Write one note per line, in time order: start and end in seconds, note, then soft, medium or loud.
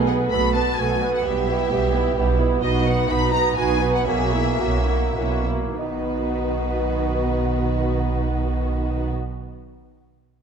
0.00 0.26 B1 medium
0.00 0.26 B2 medium
0.00 0.28 G#4 medium
0.06 0.31 B3 soft
0.06 0.31 A4 soft
0.06 0.31 B4 soft
0.06 0.15 F#5 medium
0.30 0.73 B1 soft
0.30 0.73 B2 soft
0.30 0.54 A3 soft
0.30 0.55 B3 soft
0.30 1.25 F#4 soft
0.30 0.54 A4 soft
0.30 0.55 A4 soft
0.30 0.55 B5 medium
0.54 0.78 B3 soft
0.54 0.79 A4 soft
0.54 0.78 B4 soft
0.54 0.77 A5 medium
0.78 1.19 B1 soft
0.78 1.20 B2 soft
0.78 1.01 A3 soft
0.78 1.01 B3 soft
0.78 1.00 A4 soft
0.78 1.01 A4 soft
0.78 1.13 G#5 medium
1.00 1.25 B3 soft
1.00 1.24 A4 soft
1.00 1.25 B4 soft
1.14 1.25 F#5 medium
1.23 1.66 B1 soft
1.23 1.65 B2 medium
1.23 1.46 G3 soft
1.23 1.48 B3 soft
1.23 1.47 G4 soft
1.23 2.15 G4 medium
1.23 1.46 G4 soft
1.23 2.39 E5 medium
1.48 1.71 B3 soft
1.48 1.71 E4 soft
1.48 1.71 G4 soft
1.71 2.12 B1 soft
1.71 2.12 B2 soft
1.71 1.94 G3 soft
1.71 1.94 B3 soft
1.71 1.94 G4 soft
1.71 1.93 G4 soft
1.93 2.16 B3 soft
1.93 2.17 B3 soft
1.93 2.16 E4 soft
1.93 2.15 G4 soft
2.15 2.57 B1 medium
2.15 2.57 B2 soft
2.15 2.37 G3 soft
2.15 2.40 B3 soft
2.15 2.63 E4 soft
2.15 2.37 G4 soft
2.15 2.38 G4 soft
2.39 2.62 B3 soft
2.39 2.62 E4 soft
2.39 2.60 G4 soft
2.61 3.04 B1 medium
2.61 3.03 B2 medium
2.61 2.86 B3 soft
2.61 2.84 D#4 soft
2.61 2.83 F#4 soft
2.61 3.09 F#4 medium
2.61 2.83 D#5 medium
2.84 3.09 B3 soft
2.84 3.06 D#4 soft
2.84 3.08 F#4 soft
2.84 3.09 F#5 medium
3.07 3.52 B1 medium
3.07 3.51 B2 soft
3.07 3.32 B3 soft
3.07 3.31 D#4 soft
3.07 3.57 D#4 medium
3.07 3.32 F#4 soft
3.07 3.33 B5 medium
3.32 3.57 B3 soft
3.32 3.56 B3 soft
3.32 3.55 D#4 soft
3.32 3.55 F#4 soft
3.32 3.56 A#5 medium
3.55 4.01 B1 medium
3.55 4.01 B2 medium
3.55 3.80 B3 soft
3.55 3.79 D#4 soft
3.55 3.80 F#4 soft
3.55 4.07 B4 medium
3.55 3.94 G#5 medium
3.79 4.06 B3 soft
3.79 4.06 D#4 soft
3.79 4.05 F#4 soft
3.95 4.07 F#5 medium
4.05 4.55 B1 medium
4.05 4.54 B2 medium
4.05 4.33 A#3 soft
4.05 4.31 C#4 soft
4.05 4.31 F#4 soft
4.05 4.32 F#4 soft
4.05 4.59 G#4 medium
4.05 5.46 E5 medium
4.32 4.60 A#3 soft
4.32 4.60 E4 soft
4.32 4.58 F#4 soft
4.59 5.11 B1 soft
4.59 5.11 B2 soft
4.59 4.88 A#3 soft
4.59 4.88 C#4 soft
4.59 4.87 F#4 soft
4.59 4.88 F#4 soft
4.59 5.18 F#4 soft
4.87 5.18 A#3 soft
4.87 5.17 A#3 soft
4.87 5.18 E4 soft
4.87 5.17 F#4 soft
5.16 5.72 B1 soft
5.16 5.72 B2 soft
5.16 5.48 A#3 soft
5.16 5.46 C#4 soft
5.16 5.48 E4 soft
5.16 5.45 F#4 soft
5.16 5.46 F#4 soft
5.46 5.78 A#3 soft
5.46 5.77 E4 soft
5.46 5.77 F#4 soft
5.77 9.11 B1 soft
5.77 9.10 B2 soft
5.77 9.09 D#3 soft
5.77 9.09 B3 soft
5.77 9.11 B3 soft
5.77 9.10 D#4 soft
5.77 9.10 F#4 soft
5.77 9.11 F#4 soft
5.77 9.09 B4 soft